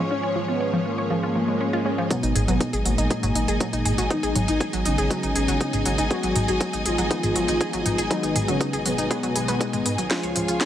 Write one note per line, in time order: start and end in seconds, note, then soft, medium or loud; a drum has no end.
0.00 2.16 G#2 medium
0.00 2.16 D#3 medium
0.00 2.07 F3 medium
0.00 2.08 F3 medium
0.00 2.08 G#3 medium
0.00 2.07 C#4 medium
0.00 2.08 C#4 medium
0.00 2.07 G#4 medium
0.00 2.07 C#5 medium
0.11 0.37 C#4 loud
0.11 0.16 F4 medium
0.23 0.27 C#5 medium
0.36 0.44 F3 loud
0.48 0.75 B3 medium
0.48 0.54 F4 medium
0.60 0.64 C#5 medium
0.73 0.81 F3 loud
0.85 2.01 A#3 loud
0.85 0.91 F4 medium
0.98 1.02 C#5 medium
1.11 1.19 F3 loud
1.11 swell medium
1.23 1.29 F4 medium
1.36 1.41 F3 medium
1.48 1.54 G#3 medium
1.61 1.66 C#4 medium
1.73 1.79 F4 loud
1.86 1.94 C#4 medium
1.98 2.04 F3 loud
2.10 2.37 B2 medium
2.10 2.19 F#3 loud
2.10 3.08 F#3 medium
2.10 3.08 G#3 medium
2.10 3.08 B3 loud
2.10 2.37 B3 loud
2.10 10.07 D#4 medium
2.10 10.65 G#4 medium
2.10 10.07 D#5 medium
2.10 10.07 G#5 medium
2.10 kick loud
2.10 closed hi-hat medium
2.23 2.33 G#1 medium
2.23 2.29 D#4 medium
2.23 closed hi-hat medium
2.35 2.46 G#1 loud
2.35 2.39 G#4 medium
2.35 mid tom medium
2.35 open hi-hat loud
2.48 2.58 G#1 medium
2.48 2.75 B2 medium
2.48 2.57 F#3 loud
2.48 2.75 B3 medium
2.48 closed hi-hat medium
2.60 2.66 D#4 medium
2.60 kick loud
2.60 closed hi-hat medium
2.73 2.83 G#1 medium
2.73 2.77 G#4 medium
2.73 closed hi-hat medium
2.85 2.96 G#1 loud
2.85 4.01 A#2 medium
2.85 2.94 F#3 loud
2.85 4.01 A#3 loud
2.85 open hi-hat loud
2.98 3.08 G#1 medium
2.98 3.04 D#4 medium
2.98 closed hi-hat medium
3.10 4.08 F#3 medium
3.10 4.08 G#3 medium
3.10 4.08 D#4 loud
3.10 3.14 G#4 medium
3.10 kick loud
3.10 closed hi-hat medium
3.23 3.33 G#1 medium
3.23 3.31 F#3 loud
3.23 closed hi-hat medium
3.23 mid tom medium
3.35 3.46 G#1 medium
3.35 3.41 D#4 medium
3.35 open hi-hat loud
3.48 3.58 G#1 medium
3.48 3.52 G#4 medium
3.48 closed hi-hat medium
3.60 3.69 F#3 loud
3.60 kick loud
3.60 closed hi-hat medium
3.73 3.83 G#1 medium
3.73 3.79 D#4 medium
3.73 closed hi-hat medium
3.85 3.96 G#1 loud
3.85 3.89 G#4 medium
3.85 mid tom medium
3.85 open hi-hat loud
3.98 4.08 G#1 medium
3.98 4.06 F#3 loud
3.98 closed hi-hat medium
4.10 4.37 D#3 medium
4.10 5.08 F#3 medium
4.10 5.08 G#3 medium
4.10 5.08 B3 medium
4.10 4.37 D#4 loud
4.10 4.16 D#4 medium
4.10 kick loud
4.10 closed hi-hat medium
4.23 4.33 G#1 medium
4.23 4.27 G#4 medium
4.23 closed hi-hat medium
4.35 4.46 G#1 loud
4.35 4.44 F#3 loud
4.35 mid tom medium
4.35 open hi-hat loud
4.48 4.58 G#1 medium
4.48 4.75 D#3 medium
4.48 4.54 D#4 medium
4.48 4.75 D#4 medium
4.48 closed hi-hat medium
4.61 4.64 G#4 medium
4.61 kick loud
4.61 closed hi-hat medium
4.73 4.83 G#1 medium
4.73 4.81 F#3 loud
4.73 closed hi-hat medium
4.85 4.96 G#1 loud
4.85 6.01 C#3 medium
4.85 6.01 C#4 loud
4.85 4.91 D#4 medium
4.85 open hi-hat loud
4.98 5.08 G#1 medium
4.98 5.02 G#4 medium
4.98 closed hi-hat medium
5.11 5.19 F#3 loud
5.11 6.08 F#3 medium
5.11 6.08 G#3 medium
5.11 6.08 B3 loud
5.11 kick loud
5.11 closed hi-hat medium
5.23 5.33 G#1 medium
5.23 5.29 D#4 medium
5.23 closed hi-hat medium
5.36 5.46 G#1 loud
5.36 5.39 G#4 medium
5.36 open hi-hat loud
5.48 5.58 G#1 medium
5.48 5.57 F#3 loud
5.48 closed hi-hat medium
5.61 5.66 D#4 medium
5.61 kick loud
5.61 closed hi-hat medium
5.73 5.83 G#1 medium
5.73 5.77 G#4 medium
5.73 closed hi-hat medium
5.73 mid tom medium
5.86 5.96 G#1 loud
5.86 5.94 F#3 loud
5.86 open hi-hat loud
5.98 6.08 G#1 medium
5.98 6.04 D#4 medium
5.98 closed hi-hat medium
6.11 7.08 F#3 medium
6.11 6.37 F#3 medium
6.11 7.08 G#3 medium
6.11 7.08 B3 loud
6.11 6.37 F#4 loud
6.11 6.14 G#4 medium
6.11 kick loud
6.11 closed hi-hat medium
6.23 6.33 G#1 medium
6.23 6.32 F#3 loud
6.23 closed hi-hat medium
6.36 6.46 G#1 loud
6.36 6.41 D#4 medium
6.36 mid tom medium
6.36 open hi-hat loud
6.48 6.58 G#1 medium
6.48 6.75 F#3 medium
6.48 6.75 F#4 medium
6.48 6.52 G#4 medium
6.48 closed hi-hat medium
6.61 6.69 F#3 loud
6.61 kick loud
6.61 closed hi-hat medium
6.73 6.83 G#1 medium
6.73 6.79 D#4 medium
6.73 closed hi-hat medium
6.85 6.96 G#1 loud
6.85 8.01 F3 medium
6.85 8.01 F4 loud
6.85 6.89 G#4 medium
6.85 open hi-hat loud
6.98 7.08 G#1 medium
6.98 7.07 F#3 loud
6.98 closed hi-hat soft
7.11 8.08 D#3 medium
7.11 8.08 G#3 medium
7.11 8.08 B3 loud
7.11 7.16 D#4 medium
7.11 kick loud
7.11 closed hi-hat medium
7.23 7.33 G#1 medium
7.23 7.27 G#4 medium
7.23 closed hi-hat medium
7.23 mid tom medium
7.36 7.46 G#1 loud
7.36 7.44 F#3 medium
7.36 open hi-hat loud
7.48 7.58 G#1 medium
7.48 7.54 D#4 medium
7.48 closed hi-hat medium
7.61 7.64 G#4 medium
7.61 kick loud
7.61 closed hi-hat medium
7.73 7.83 G#1 medium
7.73 7.82 F#3 loud
7.73 closed hi-hat medium
7.86 7.96 G#1 loud
7.86 7.91 D#4 medium
7.86 mid tom medium
7.86 open hi-hat loud
7.98 8.08 G#1 medium
7.98 8.02 G#4 medium
7.98 closed hi-hat medium
8.11 8.37 D#3 medium
8.11 8.19 F#3 loud
8.11 9.08 F#3 medium
8.11 9.08 G#3 medium
8.11 9.08 B3 loud
8.11 8.37 D#4 loud
8.11 kick loud
8.11 closed hi-hat medium
8.23 8.33 G#1 medium
8.23 8.29 D#4 medium
8.23 closed hi-hat medium
8.36 8.46 G#1 medium
8.36 8.39 G#4 medium
8.36 mid tom medium
8.36 open hi-hat loud
8.48 8.58 G#1 medium
8.48 8.75 C#3 medium
8.48 8.57 F#3 loud
8.48 8.75 C#4 medium
8.48 closed hi-hat medium
8.61 8.66 D#4 medium
8.61 kick loud
8.61 closed hi-hat medium
8.73 8.83 G#1 medium
8.73 8.77 G#4 medium
8.73 closed hi-hat medium
8.85 8.96 G#1 loud
8.85 10.01 B2 medium
8.85 8.94 F#3 loud
8.85 10.01 B3 loud
8.85 open hi-hat loud
8.98 9.08 G#1 loud
8.98 9.04 D#4 medium
8.98 closed hi-hat medium
9.11 9.33 F#3 medium
9.11 9.33 G#3 medium
9.11 9.33 B3 loud
9.11 9.14 G#4 medium
9.11 kick loud
9.11 closed hi-hat medium
9.23 9.33 F#1 medium
9.23 9.32 F#3 loud
9.23 closed hi-hat soft
9.36 9.46 G#1 medium
9.36 9.45 F#3 medium
9.36 9.45 G#3 medium
9.36 9.45 B3 medium
9.36 9.41 G#4 medium
9.36 open hi-hat loud
9.48 9.58 G#1 medium
9.48 9.59 F#3 loud
9.48 9.59 G#3 medium
9.48 9.59 B3 loud
9.48 9.57 B4 medium
9.48 closed hi-hat medium
9.61 9.69 G#3 loud
9.61 kick loud
9.61 closed hi-hat medium
9.73 9.83 G#1 medium
9.73 9.77 G#3 loud
9.73 closed hi-hat soft
9.73 mid tom medium
9.86 9.96 G#2 loud
9.86 9.94 B3 medium
9.86 open hi-hat loud
9.98 10.08 G#1 medium
9.98 10.02 F#3 medium
9.98 closed hi-hat medium
10.11 10.65 F3 medium
10.11 10.37 F3 medium
10.11 10.65 G#3 medium
10.11 10.65 C#4 medium
10.11 10.65 F4 medium
10.11 10.16 F4 medium
10.11 10.37 F4 medium
10.11 10.65 C#5 medium
10.11 10.65 G#5 medium
10.11 kick loud
10.11 snare soft
10.11 closed hi-hat medium
10.11 riser medium
10.23 10.33 C#2 medium
10.23 10.27 C#5 medium
10.23 closed hi-hat medium
10.36 10.46 C#2 loud
10.36 10.44 F3 medium
10.36 mid tom medium
10.36 open hi-hat loud
10.48 10.58 C#2 medium
10.48 10.65 F3 medium
10.48 10.54 F4 medium
10.48 10.65 F4 medium
10.48 closed hi-hat medium
10.61 10.64 C#5 medium
10.61 kick loud
10.61 snare soft
10.61 closed hi-hat medium